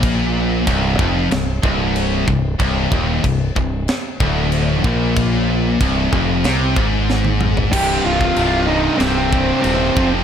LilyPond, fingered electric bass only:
\new Staff \with { instrumentName = "Fingered electric bass" } { \clef bass \time 4/4 \key c \minor \tempo 4 = 94 bes,,4 c,,8 f,,8 c,,8 c,,4 c,,8 | c,,8 ees,,8 c,,8 c,,8 r8 d,,4 bes,,8~ | bes,,4 c,,8 f,,8 c,8 aes,,4. | c,,8 c,,8 c,,4 c,,4 ees,,8 f,,8 | }